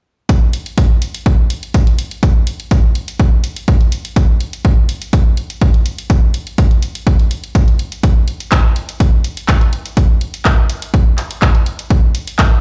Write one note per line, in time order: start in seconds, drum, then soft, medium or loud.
0.29 kick loud
0.29 closed hi-hat medium
0.53 closed hi-hat medium
0.66 closed hi-hat medium
0.78 kick loud
0.78 closed hi-hat medium
1.02 closed hi-hat medium
1.15 closed hi-hat medium
1.26 kick loud
1.26 closed hi-hat medium
1.50 closed hi-hat medium
1.63 closed hi-hat medium
1.74 kick loud
1.74 closed hi-hat medium
1.87 closed hi-hat soft
1.99 closed hi-hat medium
2.11 closed hi-hat medium
2.23 kick loud
2.23 closed hi-hat medium
2.47 closed hi-hat medium
2.60 closed hi-hat soft
2.71 kick loud
2.71 closed hi-hat medium
2.95 closed hi-hat medium
3.08 closed hi-hat medium
3.20 kick loud
3.20 closed hi-hat medium
3.44 closed hi-hat medium
3.56 closed hi-hat medium
3.68 kick loud
3.68 closed hi-hat medium
3.81 closed hi-hat soft
3.92 closed hi-hat medium
4.05 closed hi-hat soft
4.16 kick loud
4.16 closed hi-hat medium
4.40 closed hi-hat medium
4.53 closed hi-hat medium
4.65 kick loud
4.65 closed hi-hat medium
4.89 closed hi-hat medium
5.02 closed hi-hat soft
5.13 kick loud
5.13 closed hi-hat medium
5.37 closed hi-hat medium
5.50 closed hi-hat soft
5.61 kick loud
5.61 closed hi-hat medium
5.74 closed hi-hat soft
5.86 closed hi-hat medium
5.98 closed hi-hat soft
6.10 kick loud
6.10 closed hi-hat medium
6.34 closed hi-hat medium
6.47 closed hi-hat soft
6.58 kick loud
6.58 closed hi-hat medium
6.71 closed hi-hat soft
6.82 closed hi-hat medium
6.95 closed hi-hat soft
7.07 kick loud
7.07 closed hi-hat medium
7.19 closed hi-hat soft
7.31 closed hi-hat medium
7.44 closed hi-hat soft
7.55 kick loud
7.55 closed hi-hat medium
7.68 closed hi-hat soft
7.79 closed hi-hat medium
7.92 closed hi-hat soft
8.03 kick loud
8.03 closed hi-hat medium
8.28 closed hi-hat medium
8.40 closed hi-hat soft
8.52 kick loud
8.52 clap loud
8.52 closed hi-hat medium
8.76 closed hi-hat medium
8.89 closed hi-hat medium
9.00 kick loud
9.00 closed hi-hat medium
9.24 closed hi-hat medium
9.37 closed hi-hat soft
9.48 kick loud
9.48 clap loud
9.48 closed hi-hat medium
9.61 closed hi-hat soft
9.73 closed hi-hat medium
9.86 closed hi-hat soft
9.97 kick loud
9.97 closed hi-hat medium
10.21 closed hi-hat medium
10.34 closed hi-hat medium
10.45 kick loud
10.45 clap loud
10.45 closed hi-hat medium
10.70 closed hi-hat medium
10.82 closed hi-hat medium
10.94 kick loud
10.94 closed hi-hat medium
11.18 clap soft
11.18 closed hi-hat medium
11.31 closed hi-hat medium
11.42 kick loud
11.42 clap loud
11.42 closed hi-hat medium
11.55 closed hi-hat soft
11.66 closed hi-hat medium
11.79 closed hi-hat soft
11.90 kick loud
11.90 closed hi-hat medium
12.15 closed hi-hat medium
12.27 closed hi-hat medium
12.39 kick loud
12.39 clap loud
12.39 closed hi-hat medium